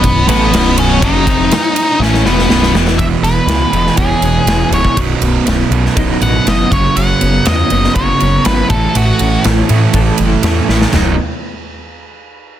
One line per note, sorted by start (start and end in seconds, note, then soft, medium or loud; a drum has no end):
0.00 0.27 B0 medium
0.00 0.23 B1 medium
0.00 0.23 F#2 medium
0.00 2.95 F#3 medium
0.00 0.26 B3 medium
0.00 2.95 C#4 medium
0.00 2.95 D#4 medium
0.00 0.28 B4 loud
0.00 kick loud
0.00 ride loud
0.27 0.51 A1 loud
0.27 0.51 A2 loud
0.27 0.51 E3 loud
0.27 0.52 A3 loud
0.27 0.74 B3 medium
0.27 0.78 B4 loud
0.27 ride medium
0.51 0.98 B0 loud
0.51 1.00 B1 medium
0.51 1.01 F#2 loud
0.51 1.01 B2 loud
0.51 snare loud
0.51 ride loud
0.78 1.01 C#4 medium
0.78 1.01 C#5 medium
0.78 ride medium
1.02 1.25 F#1 loud
1.02 1.26 F#2 loud
1.02 1.26 C#3 loud
1.02 1.26 F#3 loud
1.02 1.98 D#4 medium
1.02 2.04 D#5 loud
1.02 kick loud
1.02 ride loud
1.27 1.50 F1 loud
1.27 1.50 F2 loud
1.27 1.51 C3 loud
1.27 1.51 F3 loud
1.27 kick loud
1.27 ride medium
1.51 snare loud
1.51 ride loud
1.76 ride medium
2.00 2.23 A1 loud
2.00 2.24 A2 medium
2.00 2.24 E3 loud
2.00 2.25 A3 loud
2.00 2.25 C#4 medium
2.00 2.26 C#5 loud
2.00 snare medium
2.14 snare medium
2.25 2.48 E1 medium
2.25 2.49 E2 loud
2.25 2.49 B2 loud
2.25 2.49 E3 loud
2.25 2.72 B3 medium
2.25 2.72 B4 medium
2.25 snare medium
2.39 snare medium
2.49 2.72 B0 loud
2.49 2.73 B1 medium
2.49 2.74 F#2 loud
2.49 2.73 B2 loud
2.49 snare loud
2.63 snare medium
2.73 2.97 E1 loud
2.73 2.98 E2 loud
2.73 2.98 B2 loud
2.73 2.99 E3 loud
2.73 snare loud
2.88 snare loud
2.98 3.15 E1 medium
2.98 4.23 E2 medium
2.98 3.47 E2 medium
2.98 3.48 B2 loud
2.98 3.48 E3 loud
2.98 3.05 E5 loud
2.98 kick loud
2.98 ride medium
3.22 3.39 E1 medium
3.22 3.72 G#3 medium
3.22 3.94 B4 medium
3.22 snare soft
3.22 ride medium
3.47 3.63 C#2 medium
3.47 3.71 E2 medium
3.47 3.72 B2 medium
3.47 4.72 E3 medium
3.47 3.73 E3 medium
3.47 snare loud
3.47 ride medium
3.72 3.89 E1 medium
3.72 3.97 E2 medium
3.72 3.97 B2 medium
3.72 3.98 E3 medium
3.72 4.47 G#3 medium
3.72 ride medium
3.87 snare soft
3.97 4.14 E1 medium
3.97 4.46 E2 medium
3.97 4.47 B2 medium
3.97 4.48 E3 medium
3.97 4.97 C#4 medium
3.97 4.68 G#4 medium
3.97 kick loud
3.97 ride medium
4.21 4.38 E1 medium
4.21 7.20 B3 medium
4.21 ride medium
4.46 4.62 E1 medium
4.46 4.71 E2 medium
4.46 4.72 B2 medium
4.46 4.72 E3 medium
4.46 4.98 G#3 medium
4.46 snare loud
4.46 ride medium
4.71 4.87 C#1 medium
4.71 4.96 E2 medium
4.71 4.96 B2 medium
4.71 4.98 E3 medium
4.71 4.96 E3 medium
4.71 4.96 C#5 medium
4.71 ride medium
4.85 kick medium
4.97 5.13 B0 medium
4.97 5.45 B1 loud
4.97 5.45 F#2 loud
4.97 5.46 B2 loud
4.97 kick loud
4.97 ride loud
5.21 5.37 B0 medium
5.21 5.71 B2 medium
5.21 ride medium
5.46 5.63 B0 medium
5.46 5.71 B1 medium
5.46 6.70 F#2 medium
5.46 5.71 F#2 medium
5.46 5.71 B2 medium
5.46 snare loud
5.46 ride medium
5.71 5.87 B1 medium
5.71 5.95 B1 medium
5.71 5.96 F#2 medium
5.71 6.45 B2 medium
5.71 5.96 B2 medium
5.71 ride medium
5.86 snare soft
5.96 6.13 B0 medium
5.96 6.45 B1 medium
5.96 6.45 F#2 medium
5.96 6.46 B2 loud
5.96 6.71 D#4 medium
5.96 kick loud
5.96 ride medium
6.21 6.37 A1 medium
6.21 7.19 F#3 medium
6.21 6.48 F#5 loud
6.21 ride medium
6.47 6.63 F#1 medium
6.47 6.70 B1 medium
6.47 6.69 F#2 medium
6.47 6.71 B2 medium
6.47 6.70 B2 medium
6.47 6.70 D#5 loud
6.47 snare loud
6.47 ride medium
6.70 6.88 F#1 medium
6.70 6.95 F#2 loud
6.70 6.95 F#2 medium
6.70 6.95 C#3 loud
6.70 6.96 F#3 loud
6.70 6.95 C#5 medium
6.70 kick loud
6.70 ride medium
6.96 7.12 F#1 medium
6.96 7.45 F#2 medium
6.96 8.21 F#2 medium
6.96 7.45 C#3 medium
6.96 7.46 F#3 medium
6.96 7.47 F#5 loud
6.96 ride medium
7.20 7.38 F#1 medium
7.20 7.70 B3 medium
7.20 ride medium
7.46 7.63 E2 medium
7.46 7.69 F#2 medium
7.46 7.70 C#3 medium
7.46 9.44 F#3 medium
7.46 7.71 F#3 loud
7.46 7.92 D#5 loud
7.46 snare loud
7.46 ride medium
7.70 7.87 F#1 medium
7.70 7.94 F#2 medium
7.70 7.94 C#3 medium
7.70 7.96 F#3 medium
7.70 8.44 B3 medium
7.70 ride medium
7.84 snare soft
7.95 8.12 F#1 medium
7.95 8.44 F#2 medium
7.95 8.44 C#3 loud
7.95 8.45 F#3 medium
7.95 9.94 F#4 medium
7.95 8.42 C#5 medium
7.95 kick loud
7.95 ride medium
8.20 8.37 F#1 medium
8.20 8.70 C#4 medium
8.20 ride medium
8.45 8.62 G#1 medium
8.45 8.68 F#2 medium
8.45 8.68 C#3 medium
8.45 8.71 F#3 medium
8.45 8.70 B3 medium
8.45 8.68 B4 medium
8.45 snare loud
8.45 ride medium
8.70 8.86 A1 medium
8.70 8.93 A2 medium
8.70 8.93 E3 loud
8.70 8.94 A3 loud
8.70 8.96 A4 medium
8.70 kick loud
8.70 ride medium
8.94 9.11 A1 medium
8.94 9.43 A2 loud
8.94 9.43 E3 loud
8.94 9.43 A3 loud
8.94 9.42 F#4 medium
8.94 ride loud
9.19 9.36 A1 medium
9.19 9.69 C#4 medium
9.19 ride medium
9.44 9.61 A1 medium
9.44 9.68 A2 medium
9.44 9.68 E3 medium
9.44 9.68 A3 loud
9.44 10.67 A3 medium
9.44 snare loud
9.44 ride medium
9.69 9.92 A2 medium
9.69 9.86 A2 medium
9.69 9.93 E3 loud
9.69 9.93 A3 medium
9.69 10.42 C#4 medium
9.69 ride medium
9.93 10.10 A1 medium
9.93 10.42 A2 medium
9.93 10.43 E3 loud
9.93 10.43 A3 medium
9.93 10.93 A4 medium
9.93 kick loud
9.93 ride loud
10.18 10.35 F#1 medium
10.18 10.93 E4 medium
10.18 ride medium
10.43 10.59 E2 medium
10.43 10.67 A2 medium
10.43 10.68 E3 medium
10.43 10.68 A3 medium
10.43 10.93 C#4 medium
10.43 snare loud
10.43 ride medium
10.68 10.84 A1 medium
10.68 10.92 A2 medium
10.68 10.92 E3 medium
10.68 10.93 A3 medium
10.68 10.92 A3 loud
10.68 snare medium
10.81 snare medium
10.92 11.16 B0 medium
10.92 11.12 B1 medium
10.92 11.13 B1 loud
10.92 11.13 F#2 medium
10.92 11.13 B2 medium
10.92 11.14 B2 loud
10.92 11.13 F#3 loud
10.92 11.14 F#3 medium
10.92 11.13 D#4 loud
10.92 11.14 D#4 loud
10.92 snare loud
10.92 floor tom medium
10.92 splash medium